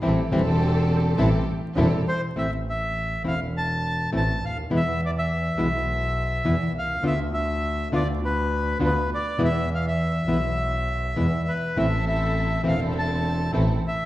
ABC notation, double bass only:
X:1
M:4/4
L:1/8
Q:1/4=102
K:Am
V:1 name="Double bass" clef=bass
A,,, E,,,3 A,,, z E,,, z | A,,,3 E,,,3 A,,, D,, | E,,3 B,,,3 E,, C,, | D,,3 D,,3 D,, z |
E,,3 B,,,3 E,, z | A,,,3 E,,,3 A,,, z |]